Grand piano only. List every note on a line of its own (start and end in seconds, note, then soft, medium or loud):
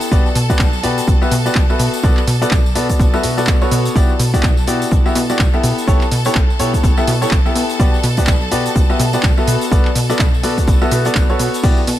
0.11 0.27 B3 loud
0.11 0.27 F#4 medium
0.11 0.27 G4 medium
0.11 0.27 B4 medium
0.11 0.27 D5 loud
0.50 0.61 B3 loud
0.50 0.61 F#4 medium
0.50 0.61 G4 medium
0.50 0.61 B4 medium
0.50 0.61 D5 loud
0.83 1.18 B3 medium
0.83 1.18 F#4 medium
0.83 1.18 G4 medium
0.83 1.18 B4 medium
0.83 1.18 D5 medium
1.22 1.33 B3 loud
1.22 1.33 F#4 medium
1.22 1.33 G4 medium
1.22 1.33 B4 medium
1.22 1.33 E5 loud
1.46 1.57 B3 medium
1.46 1.57 F#4 medium
1.46 1.57 G4 medium
1.46 1.57 B4 medium
1.46 1.57 D5 medium
1.70 2.01 B3 medium
1.70 2.01 F#4 medium
1.70 2.01 A4 medium
1.70 2.01 B4 medium
1.70 2.01 E5 medium
2.03 2.19 B3 loud
2.03 2.19 F#4 medium
2.03 2.19 A4 medium
2.03 2.19 B4 medium
2.03 2.19 D5 loud
2.42 2.53 B3 medium
2.42 2.53 F#4 medium
2.42 2.53 A4 medium
2.42 2.53 B4 medium
2.42 2.53 D5 loud
2.75 3.10 B3 medium
2.75 3.10 F#4 medium
2.75 3.10 A4 medium
2.75 3.10 B4 medium
2.75 3.10 D5 medium
3.14 3.22 B3 loud
3.14 3.22 F#4 medium
3.14 3.22 A4 medium
3.14 3.22 B4 medium
3.14 3.22 E5 loud
3.23 3.35 B3 medium
3.23 3.36 F#4 medium
3.23 3.35 A4 medium
3.23 3.35 B4 medium
3.23 3.36 E5 medium
3.38 3.57 B3 medium
3.38 3.57 F#4 medium
3.38 3.57 A4 medium
3.38 3.57 B4 medium
3.38 3.57 D5 loud
3.62 3.93 B3 medium
3.62 3.93 F#4 medium
3.62 3.93 A4 medium
3.62 3.93 B4 medium
3.62 3.93 C#5 loud
3.95 4.11 B3 loud
3.95 4.11 E4 medium
3.95 4.11 F#4 medium
3.95 4.11 G4 medium
3.95 4.11 D5 loud
4.34 4.45 B3 medium
4.34 4.45 E4 medium
4.34 4.45 F#4 medium
4.34 4.45 G4 medium
4.34 4.45 D5 loud
4.67 5.02 B3 medium
4.67 5.02 E4 medium
4.67 5.02 F#4 medium
4.67 5.02 G4 medium
4.67 5.02 D5 medium
5.06 5.17 B3 loud
5.06 5.17 E4 medium
5.06 5.17 F#4 medium
5.06 5.17 G4 medium
5.06 5.17 E5 loud
5.30 5.41 B3 medium
5.30 5.41 E4 medium
5.30 5.41 F#4 medium
5.30 5.41 G4 medium
5.30 5.41 D5 medium
5.54 5.85 B3 medium
5.54 5.85 E4 medium
5.54 5.85 G4 medium
5.54 5.85 A4 medium
5.54 5.85 E5 loud
5.87 6.03 B3 loud
5.87 6.03 E4 medium
5.87 6.03 G4 medium
5.87 6.03 A4 medium
5.87 6.03 C#5 loud
6.26 6.37 B3 medium
6.26 6.37 E4 medium
6.26 6.37 G4 medium
6.26 6.37 A4 medium
6.26 6.37 C#5 loud
6.59 6.94 B3 medium
6.59 6.94 E4 medium
6.59 6.94 G4 medium
6.59 6.94 A4 medium
6.59 6.94 C#5 loud
6.98 7.09 B3 loud
6.98 7.09 E4 medium
6.98 7.09 G4 medium
6.98 7.09 A4 medium
6.98 7.09 E5 loud
7.22 7.33 B3 medium
7.22 7.33 E4 medium
7.22 7.33 G4 medium
7.22 7.33 A4 medium
7.22 7.33 C#5 medium
7.46 7.77 B3 medium
7.46 7.77 E4 medium
7.46 7.77 G4 medium
7.46 7.77 A4 medium
7.46 7.77 E5 loud
7.79 7.95 B3 loud
7.79 7.95 F#4 medium
7.79 7.95 G4 medium
7.79 7.95 B4 medium
7.79 7.95 D5 loud
8.18 8.29 B3 medium
8.18 8.29 F#4 medium
8.18 8.29 G4 medium
8.18 8.29 B4 medium
8.18 8.29 D5 loud
8.52 8.86 B3 medium
8.52 8.86 F#4 medium
8.52 8.86 G4 medium
8.52 8.86 B4 medium
8.52 8.86 D5 medium
8.90 9.01 B3 loud
8.90 9.01 F#4 medium
8.90 9.01 G4 medium
8.90 9.01 B4 medium
8.90 9.01 E5 loud
9.14 9.25 B3 medium
9.14 9.25 F#4 medium
9.14 9.25 G4 medium
9.14 9.25 B4 medium
9.14 9.25 D5 medium
9.38 9.69 B3 medium
9.38 9.69 F#4 medium
9.38 9.69 A4 medium
9.38 9.69 B4 medium
9.38 9.69 E5 medium
9.72 9.87 B3 loud
9.72 9.87 F#4 medium
9.72 9.87 A4 medium
9.72 9.87 B4 medium
9.72 9.87 D5 loud
10.10 10.21 B3 medium
10.10 10.21 F#4 medium
10.10 10.21 A4 medium
10.10 10.21 B4 medium
10.10 10.21 D5 loud
10.43 10.78 B3 medium
10.43 10.78 F#4 medium
10.43 10.78 A4 medium
10.43 10.78 B4 medium
10.43 10.78 D5 medium
10.82 10.90 B3 loud
10.82 10.90 F#4 medium
10.82 10.90 A4 medium
10.82 10.90 B4 medium
10.82 10.90 E5 loud
10.91 11.04 B3 medium
10.91 11.04 F#4 medium
10.91 11.04 A4 medium
10.91 11.04 B4 medium
10.91 11.04 E5 medium
11.06 11.25 B3 medium
11.06 11.25 F#4 medium
11.06 11.25 A4 medium
11.06 11.25 B4 medium
11.06 11.25 D5 loud
11.30 11.61 B3 medium
11.30 11.61 F#4 medium
11.30 11.61 A4 medium
11.30 11.61 B4 medium
11.30 11.61 C#5 loud
11.63 11.79 B3 loud
11.63 11.79 E4 medium
11.63 11.79 F#4 medium
11.63 11.79 G4 medium
11.63 11.79 D5 loud